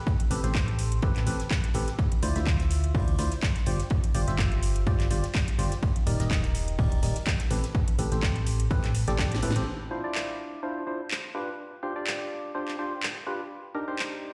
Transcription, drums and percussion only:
0.07 kick loud
0.07 ride medium
0.20 closed hi-hat soft
0.31 open hi-hat loud
0.31 ride medium
0.44 snare soft
0.44 closed hi-hat medium
0.55 kick loud
0.55 snare loud
0.55 clap loud
0.55 ride medium
0.68 closed hi-hat soft
0.79 open hi-hat medium
0.79 ride medium
0.92 closed hi-hat medium
1.02 kick loud
1.02 ride medium
1.16 snare soft
1.16 clap soft
1.16 closed hi-hat soft
1.27 open hi-hat loud
1.27 ride medium
1.40 snare soft
1.40 closed hi-hat medium
1.51 kick loud
1.51 snare loud
1.51 clap loud
1.51 ride medium
1.64 closed hi-hat soft
1.74 open hi-hat loud
1.74 ride medium
1.88 snare soft
1.88 closed hi-hat medium
1.99 kick loud
1.99 ride medium
2.12 closed hi-hat soft
2.22 open hi-hat loud
2.22 ride medium
2.35 snare medium
2.35 closed hi-hat medium
2.46 kick loud
2.46 snare loud
2.46 clap loud
2.46 ride medium
2.60 snare soft
2.60 closed hi-hat soft
2.71 open hi-hat medium
2.71 ride medium
2.84 closed hi-hat medium
2.95 kick loud
2.95 open hi-hat medium
3.08 closed hi-hat soft
3.19 snare medium
3.19 open hi-hat loud
3.19 ride medium
3.31 snare soft
3.31 closed hi-hat medium
3.42 kick loud
3.42 snare loud
3.42 clap loud
3.42 ride medium
3.56 snare soft
3.56 closed hi-hat soft
3.66 open hi-hat medium
3.66 ride medium
3.79 snare soft
3.79 closed hi-hat medium
3.90 kick loud
3.90 ride medium
4.04 closed hi-hat medium
4.15 open hi-hat medium
4.15 ride medium
4.28 snare soft
4.28 closed hi-hat medium
4.39 kick loud
4.39 snare loud
4.39 clap loud
4.39 ride medium
4.52 closed hi-hat soft
4.63 open hi-hat medium
4.63 ride medium
4.76 closed hi-hat medium
4.86 kick loud
4.86 ride medium
5.00 snare soft
5.00 clap soft
5.00 closed hi-hat soft
5.11 open hi-hat loud
5.11 ride medium
5.24 snare soft
5.24 closed hi-hat medium
5.34 kick loud
5.34 snare loud
5.34 clap loud
5.34 ride medium
5.48 closed hi-hat soft
5.59 open hi-hat medium
5.59 ride medium
5.72 snare soft
5.72 closed hi-hat medium
5.82 kick loud
5.82 ride medium
5.96 closed hi-hat medium
6.07 open hi-hat medium
6.07 ride medium
6.20 snare medium
6.20 closed hi-hat medium
6.30 kick medium
6.30 snare loud
6.30 clap loud
6.30 ride medium
6.43 snare soft
6.43 closed hi-hat soft
6.55 open hi-hat medium
6.55 ride medium
6.68 closed hi-hat medium
6.79 kick loud
6.79 open hi-hat medium
6.92 closed hi-hat soft
7.02 snare medium
7.02 open hi-hat medium
7.02 ride medium
7.15 snare soft
7.15 closed hi-hat medium
7.26 kick medium
7.26 snare loud
7.26 clap loud
7.26 ride medium
7.39 snare soft
7.39 closed hi-hat medium
7.50 open hi-hat medium
7.50 ride medium
7.63 snare soft
7.63 closed hi-hat medium
7.75 kick loud
7.75 ride medium
7.88 closed hi-hat medium
7.99 open hi-hat loud
7.99 ride medium
8.11 snare soft
8.11 closed hi-hat medium
8.22 kick loud
8.22 snare loud
8.22 clap loud
8.22 ride medium
8.36 closed hi-hat soft
8.47 open hi-hat medium
8.47 ride medium
8.60 closed hi-hat medium
8.71 kick loud
8.71 ride medium
8.83 snare soft
8.83 clap soft
8.83 closed hi-hat soft
8.94 open hi-hat medium
8.94 ride medium
9.08 snare soft
9.08 closed hi-hat medium
9.19 kick loud
9.19 snare medium
9.19 snare loud
9.19 clap loud
9.19 ride medium
9.32 snare medium
9.32 closed hi-hat medium
9.43 open hi-hat medium
9.43 ride medium
9.51 snare medium
9.56 snare soft
9.56 closed hi-hat medium
10.03 snare medium
10.15 clap loud
10.28 snare soft
10.87 snare soft
11.00 snare soft
11.11 clap loud
11.11 ride medium
11.24 snare soft
11.48 snare soft
11.59 ride medium
11.95 snare soft
12.07 clap loud
12.68 snare soft
12.68 clap soft
12.92 snare soft
13.03 clap loud
13.40 snare soft
13.50 ride medium
13.88 snare medium
13.99 clap loud
14.12 snare soft
14.23 ride medium

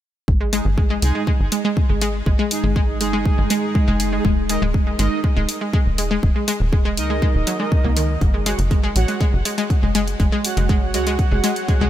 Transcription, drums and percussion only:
0.28 kick loud
0.53 open hi-hat medium
0.78 kick loud
1.02 open hi-hat loud
1.27 kick loud
1.52 open hi-hat loud
1.77 kick loud
2.02 open hi-hat medium
2.26 kick loud
2.51 open hi-hat loud
2.76 kick loud
3.01 open hi-hat loud
3.26 kick loud
3.50 open hi-hat loud
3.75 kick loud
4.00 open hi-hat loud
4.25 kick loud
4.49 open hi-hat loud
4.74 kick loud
4.99 open hi-hat loud
5.24 kick loud
5.49 open hi-hat loud
5.73 kick loud
5.98 open hi-hat loud
6.23 kick loud
6.48 open hi-hat loud
6.73 kick loud
6.97 open hi-hat loud
7.22 kick loud
7.47 open hi-hat loud
7.72 kick loud
7.97 open hi-hat loud
8.21 kick loud
8.21 closed hi-hat soft
8.46 open hi-hat loud
8.59 closed hi-hat soft
8.71 kick loud
8.71 closed hi-hat soft
8.96 open hi-hat loud
9.08 closed hi-hat soft
9.21 kick loud
9.21 closed hi-hat soft
9.45 open hi-hat medium
9.58 closed hi-hat soft
9.70 kick loud
9.70 closed hi-hat soft
9.95 open hi-hat medium
10.08 closed hi-hat soft
10.20 kick loud
10.20 closed hi-hat soft
10.45 open hi-hat loud
10.57 closed hi-hat soft
10.69 kick loud
10.69 closed hi-hat soft
10.94 open hi-hat loud
11.07 closed hi-hat soft
11.19 kick loud
11.19 closed hi-hat soft
11.44 open hi-hat medium
11.56 closed hi-hat soft
11.68 kick loud
11.68 closed hi-hat soft

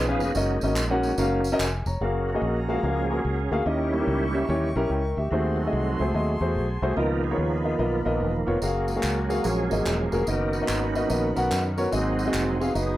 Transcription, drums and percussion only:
0.20 tambourine soft
0.35 tambourine medium
0.61 tambourine medium
0.76 clap medium
0.76 tambourine medium
1.03 tambourine soft
1.18 tambourine medium
1.44 tambourine medium
1.60 clap medium
1.60 tambourine medium
1.86 tambourine soft
8.62 tambourine medium
8.88 tambourine soft
9.03 clap medium
9.03 tambourine medium
9.30 tambourine soft
9.44 tambourine medium
9.71 tambourine medium
9.86 clap medium
9.86 tambourine medium
10.12 tambourine soft
10.27 tambourine medium
10.53 tambourine soft
10.68 clap medium
10.68 tambourine medium
10.95 tambourine soft
11.10 tambourine medium
11.36 tambourine medium
11.52 clap medium
11.52 tambourine medium
11.78 tambourine soft
11.92 tambourine medium
12.19 tambourine soft
12.34 clap medium
12.34 tambourine medium
12.61 tambourine soft
12.75 tambourine medium

